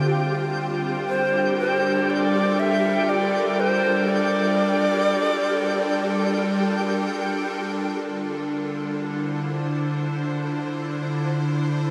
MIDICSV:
0, 0, Header, 1, 4, 480
1, 0, Start_track
1, 0, Key_signature, -1, "minor"
1, 0, Tempo, 500000
1, 11430, End_track
2, 0, Start_track
2, 0, Title_t, "Synth texture"
2, 0, Program_c, 0, 99
2, 0, Note_on_c, 0, 67, 78
2, 0, Note_on_c, 0, 79, 68
2, 7717, Note_on_c, 0, 72, 79
2, 7719, Note_on_c, 0, 84, 74
2, 7742, Note_off_c, 0, 67, 0
2, 7746, Note_off_c, 0, 79, 0
2, 11430, Note_off_c, 0, 72, 0
2, 11430, Note_off_c, 0, 84, 0
2, 11430, End_track
3, 0, Start_track
3, 0, Title_t, "Shakuhachi"
3, 0, Program_c, 1, 77
3, 1044, Note_on_c, 1, 72, 86
3, 1476, Note_off_c, 1, 72, 0
3, 1531, Note_on_c, 1, 72, 83
3, 2017, Note_on_c, 1, 74, 95
3, 2031, Note_off_c, 1, 72, 0
3, 2491, Note_on_c, 1, 76, 94
3, 2505, Note_off_c, 1, 74, 0
3, 2969, Note_on_c, 1, 74, 86
3, 2983, Note_off_c, 1, 76, 0
3, 3456, Note_on_c, 1, 72, 104
3, 3470, Note_off_c, 1, 74, 0
3, 3922, Note_on_c, 1, 74, 101
3, 3936, Note_off_c, 1, 72, 0
3, 6787, Note_off_c, 1, 74, 0
3, 11430, End_track
4, 0, Start_track
4, 0, Title_t, "Ambient pad"
4, 0, Program_c, 2, 92
4, 0, Note_on_c, 2, 65, 76
4, 0, Note_on_c, 2, 72, 75
4, 62, Note_on_c, 2, 55, 77
4, 449, Note_on_c, 2, 62, 86
4, 581, Note_on_c, 2, 70, 86
4, 840, Note_on_c, 2, 69, 85
4, 1707, Note_off_c, 2, 72, 0
4, 7701, Note_on_c, 2, 50, 75
4, 7727, Note_off_c, 2, 70, 0
4, 7737, Note_off_c, 2, 55, 0
4, 8085, Note_on_c, 2, 64, 70
4, 8258, Note_on_c, 2, 72, 72
4, 10793, Note_off_c, 2, 69, 0
4, 11430, Note_off_c, 2, 50, 0
4, 11430, Note_off_c, 2, 62, 0
4, 11430, Note_off_c, 2, 64, 0
4, 11430, Note_off_c, 2, 65, 0
4, 11430, Note_off_c, 2, 72, 0
4, 11430, End_track
0, 0, End_of_file